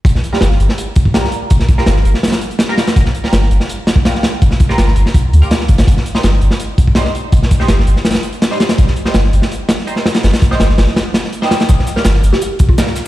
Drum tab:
HH |x---x---x---x---x---x---x---x---|x---x---x---x---xxx-x-x-x---x-x-|x---x---x---x---x---x---x---x---|x---x---x---x---x---x-x-x---x-x-|
SH |--------------------------------|--------------------------------|--------------------------------|--------------------------------|
SD |--o---o-o-o---o---------o-o-----|--o---o-o-o---o-ooo-----o-o-o-o-|--o---o-o-o---o-----o---o-o-o---|--o---o-o-o---o---------o-o---o-|
BD |o-------------------o-o---------|o---o---------------------------|o---------------------o---------|o---o-----------o-----------o---|

HH |x---x---x---x---x---x---x---x---|x---x---x---x---xxx-x-x-x---x-x-|x---x---x---x---x---x---x---x-x-|x-x-x---x---x---x---x---x---x-x-|
SH |--------------------------------|--------------------------------|--------------------------------|--------------------------------|
SD |--o---o-o-o---o---------o-o-----|--o---o-o-o---o-ooo-----o-o-o-o-|--o---o-o-o---o-----o-o---o-o-o-|o-o---o-o-o-o-o-o---o-o---o-o-o-|
BD |o-------------------o-o---------|o---o---------------------------|o-------------------------------|----o---------------------------|

HH |x---x---x---x---x---x---x---x---|
SH |x---x---x---x---x---x---x---x---|
SD |--o-o-o-o-o---o---------o-o-o---|
BD |o-------------------o-o---------|